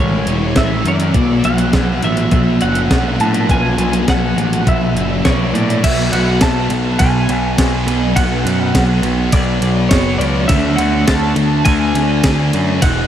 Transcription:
Already playing: picked electric bass A1, distorted electric guitar A2 E3 G#3, clean electric guitar C#5
0.26 picked electric bass E1, distorted electric guitar E4, closed hi-hat
0.56 picked electric bass A1, distorted electric guitar C#4, clean electric guitar E5, kick, snare, closed hi-hat
0.84 picked electric bass F#2, distorted electric guitar E3, closed hi-hat
0.88 clean electric guitar D5
1.00 closed hi-hat
1.14 picked electric bass B1, distorted electric guitar B2, kick, closed hi-hat
1.43 picked electric bass B1, distorted electric guitar F#3, clean electric guitar F#5, closed hi-hat
1.58 closed hi-hat
1.72 picked electric bass B1, distorted electric guitar F#3, kick, snare, closed hi-hat
2.02 picked electric bass A1, distorted electric guitar B2, clean electric guitar E5, closed hi-hat
2.17 closed hi-hat
2.31 picked electric bass B1, distorted electric guitar F#3, kick, closed hi-hat
2.61 picked electric bass F#1, distorted electric guitar D4, clean electric guitar F#5, closed hi-hat
2.75 closed hi-hat
2.90 picked electric bass B1, distorted electric guitar B3, kick, snare, closed hi-hat
3.20 picked electric bass A2, distorted electric guitar B2, clean electric guitar A5, closed hi-hat
3.34 closed hi-hat
3.48 picked electric bass B1, distorted electric guitar B2, clean electric guitar G#5, kick, closed hi-hat
3.77 picked electric bass B1, distorted electric guitar F#3, closed hi-hat
3.93 closed hi-hat
4.07 picked electric bass B1, distorted electric guitar F#3, clean electric guitar F#5, kick, snare, closed hi-hat
4.36 picked electric bass A1, distorted electric guitar B2, closed hi-hat
4.53 closed hi-hat
4.66 picked electric bass B1, distorted electric guitar F#3, clean electric guitar E5, kick, closed hi-hat
4.95 picked electric bass F#1, distorted electric guitar D4, closed hi-hat
5.25 picked electric bass B1, distorted electric guitar B3, clean electric guitar C#5 D5, kick, snare, closed hi-hat
5.53 picked electric bass A2, distorted electric guitar B2, clean electric guitar D5, closed hi-hat
5.70 closed hi-hat
5.83 picked electric bass B1, distorted electric guitar B2 F#3 B3, clean electric guitar E5, kick, crash, ride
6.12 picked electric bass B1, distorted electric guitar F#3 B3, clean electric guitar F#5, ride
6.41 picked electric bass B1, distorted electric guitar B2 F#3 B3, clean electric guitar A5, kick, snare, ride
6.69 picked electric bass B1, distorted electric guitar F#3 B3, ride
6.99 picked electric bass B1, clean electric guitar G#5, kick, ride
7.29 picked electric bass B1, ride
7.57 picked electric bass B1, distorted electric guitar B2 F#3 B3, kick, snare, ride
7.86 picked electric bass B1, distorted electric guitar F#3 B3, ride
8.16 picked electric bass B1, distorted electric guitar B2 F#3 B3, clean electric guitar F#5, kick, ride
8.45 picked electric bass F#2, distorted electric guitar F#3 B3, ride
8.74 picked electric bass B1, distorted electric guitar B2 F#3 B3, kick, snare, ride
9.02 picked electric bass B1, distorted electric guitar F#3 B3, ride
9.32 picked electric bass B1, clean electric guitar D5, kick, ride
9.61 picked electric bass B1, ride
9.89 picked electric bass F#1, distorted electric guitar B2 F#3 B3, clean electric guitar C#5, kick, snare, ride
10.18 picked electric bass C#2, distorted electric guitar F#3 B3, clean electric guitar D5, ride
10.48 picked electric bass D2, distorted electric guitar D3 A3 D4, clean electric guitar E5, kick, ride
10.76 picked electric bass D2, distorted electric guitar D4, clean electric guitar F#5, ride
10.80 distorted electric guitar A3
11.06 picked electric bass D2, distorted electric guitar D3 A3 D4, clean electric guitar A5, kick, snare, ride
11.36 picked electric bass D2, distorted electric guitar A3 D4, ride
11.65 picked electric bass D2, clean electric guitar G#5, kick, ride
11.95 picked electric bass D2, snare, ride
12.23 picked electric bass D2, distorted electric guitar D3 A3 D4, kick, snare, ride
12.53 picked electric bass F#2, distorted electric guitar A3 D4, ride
12.82 picked electric bass E1, distorted electric guitar E2 B2 E3, clean electric guitar F#5, kick, ride

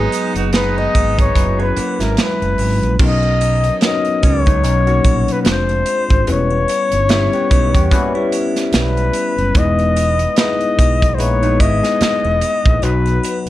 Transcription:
Already playing: tine electric piano F#3 B3 D#4 G#4, horn section G#3 B3 D#4
0.12 closed hi-hat, triangle
0.36 fingered electric bass F#1, horn section B3 D#4 F#4, closed hi-hat, muted triangle
0.53 horn section G#3 B3 D#4, flugelhorn B4, snare, closed hi-hat, muted triangle
0.78 flugelhorn D#5, muted triangle
0.95 fingered electric bass G#1, kick, closed hi-hat, triangle
1.19 flugelhorn C#5, kick, closed hi-hat, muted triangle
1.35 fingered electric bass F#1, tine electric piano F#3 C#4 E4 B4, kick, closed hi-hat, muted triangle
1.59 clean electric guitar B3 G#4, flugelhorn B4, muted triangle
1.76 clean electric guitar A#3 F#4, muted fingered electric bass stroke, closed hi-hat, triangle
2.00 fingered electric bass G#1, clean electric guitar G#3 E4, flugelhorn A#4, snare, closed hi-hat, muted triangle
2.17 snare, closed hi-hat, muted triangle
2.21 flugelhorn B4
2.42 fingered electric bass F#1, closed hi-hat, muted triangle
2.58 fingered electric bass G#1, open hi-hat, triangle
2.82 fingered electric bass A#1, closed hi-hat, muted triangle
2.99 fingered electric bass B1, tine electric piano F#3 B3 C#4 D#4 A#4, flugelhorn D#5, kick, crash, muted triangle
3.23 muted triangle
3.41 closed hi-hat, triangle
3.64 closed hi-hat, muted triangle
3.81 tine electric piano F#3 B3 C#4 D#4 A#4, flugelhorn D#5, snare, closed hi-hat, muted triangle
4.05 closed hi-hat, muted triangle
4.23 fingered electric bass C#2, clean electric guitar C#4, flugelhorn C#5, kick, closed hi-hat, triangle
4.46 clean electric guitar F#3 D#4, kick, closed hi-hat, muted triangle
4.63 fingered electric bass B1, tine electric piano B2 F#3 C#4 D#4 C#5, closed hi-hat, muted triangle
4.87 clean electric guitar A#3 F#4, closed hi-hat, muted triangle
5.04 fingered electric bass A#1, kick, closed hi-hat, triangle
5.28 closed hi-hat, muted triangle
5.32 flugelhorn B4
5.42 tine electric piano G#3 C4 D4 F4, flugelhorn B4, closed hi-hat
5.46 fingered electric bass F1, tine electric piano B4, flugelhorn C5, snare, muted triangle
5.52 tine electric piano C5
5.69 closed hi-hat, muted triangle
5.86 closed hi-hat, triangle
6.10 fingered electric bass G#1, kick, closed hi-hat, muted triangle
6.27 fingered electric bass E1, tine electric piano G3 B3 C#4 E4 B4, closed hi-hat, muted triangle
6.31 flugelhorn C#5
6.51 muted triangle
6.68 closed hi-hat, triangle
6.92 fingered electric bass G1, closed hi-hat, muted triangle
7.09 tine electric piano G3 B3 C#4 E4 G4, clean electric guitar G3 E4, snare, closed hi-hat, muted triangle
7.33 clean electric guitar B3 G4, closed hi-hat, muted triangle
7.51 fingered electric bass B1, clean electric guitar D#4 B4, kick, closed hi-hat, triangle
7.74 fingered electric bass E2, clean electric guitar B3 G4, kick, closed hi-hat, muted triangle
7.91 tine electric piano G3 B3 C#4 E4 B4, clean electric guitar A#3 F#4, kick, closed hi-hat, muted triangle
8.15 clean electric guitar G3 E4, muted triangle
8.32 closed hi-hat, triangle
8.56 snare, closed hi-hat, muted triangle
8.73 fingered electric bass B1, flugelhorn B4, snare, closed hi-hat, muted triangle
8.97 closed hi-hat, muted triangle
9.13 closed hi-hat, triangle
9.38 fingered electric bass F#1, closed hi-hat, muted triangle
9.55 fingered electric bass E1, tine electric piano G#3 B3 D#4 E4 B4, flugelhorn D#5, kick, closed hi-hat, muted triangle
9.79 closed hi-hat, muted triangle
9.96 closed hi-hat, triangle
10.19 closed hi-hat, muted triangle
10.36 tine electric piano G#3 B3 D#4 E4 B4, flugelhorn D#5, snare, closed hi-hat, muted triangle
10.61 closed hi-hat, muted triangle
10.79 fingered electric bass B1, kick, closed hi-hat, triangle
11.02 kick, closed hi-hat, muted triangle
11.14 tine electric piano G#3, flugelhorn C5
11.19 fingered electric bass A#1, tine electric piano B3 D#4 E4 B4, flugelhorn C#5, closed hi-hat, muted triangle
11.43 clean electric guitar F#3 D#4, closed hi-hat, muted triangle
11.60 fingered electric bass G#1, clean electric guitar G#3 E4, flugelhorn D#5, kick, closed hi-hat, triangle
11.83 clean electric guitar B3 G#4, snare, closed hi-hat, muted triangle
12.01 muted fingered electric bass stroke, snare, closed hi-hat, muted triangle
12.25 fingered electric bass E1, muted triangle
12.41 closed hi-hat, triangle
12.66 fingered electric bass A#1, kick, closed hi-hat, muted triangle
12.82 fingered electric bass B1, tine electric piano F#3 B3 D#4 F#4 B4, flugelhorn B4, closed hi-hat, muted triangle
13.06 closed hi-hat, muted triangle
13.23 closed hi-hat, triangle

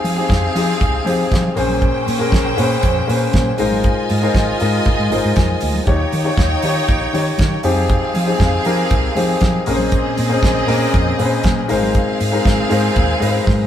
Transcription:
Already playing: grand piano F3 C4 D#4 G4 G#4, string section C4 G#4 F5
0.04 fingered electric bass F3, open hi-hat, muted conga
0.16 grand piano F3 C4 D#4 G4 G#4
0.29 fingered electric bass F2, kick, snare, closed hi-hat, high conga
0.55 grand piano F3 C4 D#4 G4 G#4, fingered electric bass F3, open hi-hat
0.81 fingered electric bass C2, kick, closed hi-hat
1.05 grand piano F3 C4 D#4 G4 G#4, fingered electric bass F3, open hi-hat, muted conga, low conga
1.31 fingered electric bass F3, kick, snare, closed hi-hat, high conga
1.55 fingered electric bass A#1, grand piano A#2 A#3 C#4 G#4 C5, string section C#4 C5 G5, open hi-hat
1.69 high conga
1.82 kick, closed hi-hat
2.07 fingered electric bass A#2, open hi-hat, muted conga
2.18 grand piano A#2 A#3 C#4 G#4 A#4
2.32 fingered electric bass A#1, kick, snare, closed hi-hat, high conga
2.57 grand piano A#2 A#3 C#4 G#4 B4, fingered electric bass A#2, open hi-hat
2.64 grand piano C5
2.83 fingered electric bass F2, kick, closed hi-hat
3.07 grand piano A#2 A#3 C#4 G#4 B4, fingered electric bass A#2, open hi-hat, muted conga
3.14 grand piano C5
3.33 fingered electric bass A#2, kick, snare, closed hi-hat, high conga
3.58 fingered electric bass G#1, grand piano G#3 D#4 F4 A#4 C5, string section F4 D#5 G#5, open hi-hat
3.71 high conga
3.84 kick, closed hi-hat
4.09 fingered electric bass G#2, open hi-hat, muted conga
4.22 grand piano G#3 D#4 F4 A#4 C5
4.34 fingered electric bass G#1, kick, snare, closed hi-hat, high conga
4.60 fingered electric bass G#2, grand piano G#3 D#4 F4 A#4 D#5, open hi-hat
4.85 fingered electric bass G#1, kick, closed hi-hat, low conga
4.99 fingered electric bass G#2
5.10 fingered electric bass G#1, grand piano G#3 D#4 F4 A#4 C5, open hi-hat, muted conga, low conga
5.25 fingered electric bass G#2
5.36 fingered electric bass F2, kick, snare, closed hi-hat, high conga
5.61 fingered electric bass D2, open hi-hat
5.74 high conga
5.86 fingered electric bass D#2, grand piano D#3 D#4 F4 G4 C#5, string section D#4 C#5 G5, kick, closed hi-hat
6.12 fingered electric bass D#3, open hi-hat, muted conga
6.24 grand piano D#3 D#4 F4 G4 C#5
6.37 fingered electric bass D#2, kick, snare, closed hi-hat, high conga
6.62 grand piano D#3 D#4 F4 G4 C#5, fingered electric bass D#3, open hi-hat
6.88 fingered electric bass A#1, kick, closed hi-hat, muted conga
7.13 grand piano D#3 D#4 F4 G4 C#5, fingered electric bass D#3, open hi-hat, muted conga
7.38 fingered electric bass D#3, kick, snare, closed hi-hat, high conga
7.63 fingered electric bass F2, grand piano F3 C4 D#4 G4 G#4, string section C4 G#4 F5, open hi-hat
7.75 high conga
7.89 kick, closed hi-hat
8.14 fingered electric bass F3, open hi-hat, muted conga
8.26 grand piano F3 C4 D#4 G4 G#4
8.39 fingered electric bass F2, kick, snare, closed hi-hat, high conga
8.65 grand piano F3 C4 D#4 G4 A#4, fingered electric bass F3, open hi-hat
8.90 fingered electric bass C2, kick, closed hi-hat, muted conga
9.15 grand piano F3 C4 D#4 G4 G#4, fingered electric bass F3, open hi-hat, muted conga, low conga
9.41 fingered electric bass F3, kick, snare, closed hi-hat, high conga
9.66 fingered electric bass A#1, grand piano A#2 A#3 C#4 G#4 A#4, string section C4 G#4 D#5, open hi-hat
9.74 grand piano C5
9.79 high conga
9.92 kick, closed hi-hat
10.17 fingered electric bass A#2, open hi-hat, muted conga
10.29 grand piano A#2 A#3 C#4 G#4 C5
10.43 fingered electric bass A#1, kick, snare, closed hi-hat, high conga
10.67 grand piano A#2 A#3 C4 G#4 A#4, fingered electric bass A#2, open hi-hat
10.73 grand piano C#4
10.94 fingered electric bass F2, kick, closed hi-hat, muted conga
11.18 grand piano A#2 A#3 C#4 G#4 B4, fingered electric bass A#2, open hi-hat, muted conga
11.25 grand piano C5
11.43 fingered electric bass A#2, kick, snare, closed hi-hat, high conga
11.68 fingered electric bass G#1, grand piano G#3 D#4 F4 A#4 C5, string section C4 G#4 F5, open hi-hat
11.82 high conga
11.95 kick, closed hi-hat
12.20 fingered electric bass G#2, open hi-hat, muted conga
12.32 grand piano G#3 D#4 F4 A#4 C5
12.45 fingered electric bass G#1, kick, snare, closed hi-hat, high conga
12.69 fingered electric bass G#2, grand piano G#3 D#4 F4 A#4 C5, open hi-hat
12.95 fingered electric bass D#2, kick, closed hi-hat, low conga
13.20 fingered electric bass G#2, grand piano G#3 D#4 F4 A#4 B4, open hi-hat, muted conga, low conga
13.28 grand piano C5
13.46 fingered electric bass G#2, kick, snare, high conga

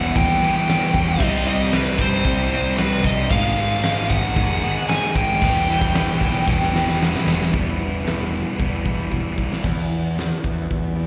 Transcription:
Already playing: picked electric bass E1, distorted electric guitar E2 B2 E3 G3 B3 E4, overdriven electric guitar E2 B2 E3, lead electric guitar F#5
0.14 picked electric bass D#2, distorted electric guitar E2 B2 E3 G3 B3 E4, lead electric guitar G5, kick, crash
0.41 distorted electric guitar E2 B2 E3 G3 B3 E4, snare
0.57 lead electric guitar G5
0.69 distorted electric guitar E2 B2 E3 G3 B3 E4, snare, crash
0.94 picked electric bass E1, distorted electric guitar E2 B2 E3 G3 B3 E4, kick
1.08 lead electric guitar D#5
1.20 picked electric bass C2, distorted electric guitar C3 G3 C4 D#4, kick, crash
1.46 distorted electric guitar C3 G3 C4 D#4, lead electric guitar D#5
1.72 distorted electric guitar C3 G3 C4 D#4, lead electric guitar B4, snare, crash
1.99 picked electric bass G2, distorted electric guitar C3 G3 C4 D#4, lead electric guitar C5, kick
2.24 picked electric bass C2, distorted electric guitar C3 G3 C4 D#4, kick, crash
2.52 distorted electric guitar C3 G3 C4 D#4
2.77 distorted electric guitar C3 G3 C4 D#4, lead electric guitar B4, snare, crash
3.04 picked electric bass C2, distorted electric guitar C3 G3 C4 D#4, lead electric guitar D#5, kick
3.29 picked electric bass G#1, distorted electric guitar G#2 D#3 G#3 B3 D#4, lead electric guitar F5, kick, crash
3.58 distorted electric guitar G#2 D#3 G#3 B3 D#4
3.83 distorted electric guitar G#2 D#3 G#3 B3 D#4, snare, crash
4.09 picked electric bass G#1, distorted electric guitar G#2 D#3 G#3 B3 D#4, lead electric guitar F#5, kick
4.36 picked electric bass F1, distorted electric guitar G#2 D#3 G#3 B3 D#4, kick, crash
4.63 distorted electric guitar G#2 D#3 G#3 B3 D#4
4.88 distorted electric guitar G#2 D#3 G#3 B3 D#4, lead electric guitar G#5, snare, crash
5.15 picked electric bass G#1, distorted electric guitar G#2 D#3 G#3 B3 D#4, lead electric guitar G5, kick
5.40 picked electric bass E1, overdriven electric guitar E2 B2, distorted electric guitar E2 B2 E3 G3 B3 E4, kick, crash
5.56 snare
5.69 distorted electric guitar E2 B2 E3 G3 B3 E4
5.81 kick
5.93 distorted electric guitar E2 B2 E3 G3 B3 E4, snare, crash
6.20 picked electric bass B1, distorted electric guitar E2 B2 E3 G3 B3 E4, kick
6.47 picked electric bass E1, distorted electric guitar E2 B2 E3 G3 B3 E4, kick, snare
6.63 snare
6.72 distorted electric guitar E2 B2 E3 G3 B3 E4, snare
6.89 snare
6.99 distorted electric guitar E2 B2 E3 G3 B3 E4, snare
7.16 snare
7.25 picked electric bass E1, distorted electric guitar E2 B2 E3 G3 B3 E4, snare
7.42 snare
7.51 picked electric bass E1, distorted electric guitar E3 G3 B3 E4, clean electric guitar E3 G3 B3 E4, kick, open hi-hat
7.77 clean electric guitar G3 B3 E4
7.81 open hi-hat
8.04 clean electric guitar E3 G3 B3 E4, snare, open hi-hat
8.31 clean electric guitar G3 B3 E4, open hi-hat
8.58 picked electric bass E1, distorted electric guitar E3 G3 B3 E4, kick, open hi-hat
8.85 picked electric bass E1, kick, open hi-hat
9.10 picked electric bass E1, clean electric guitar E3 G3 B3 E4, kick
9.36 picked electric bass B1, clean electric guitar G3 B3 E4, kick
9.53 snare
9.61 picked electric bass E2, clean electric guitar E3 G3 B3 E4, kick, crash
9.88 clean electric guitar G3 B3 E4, open hi-hat
10.15 clean electric guitar E3 G3 B3 E4, open hi-hat
10.19 snare
10.44 picked electric bass E2, kick, open hi-hat
10.71 picked electric bass E2, kick, open hi-hat
10.96 clean electric guitar G3 B3 E4, open hi-hat

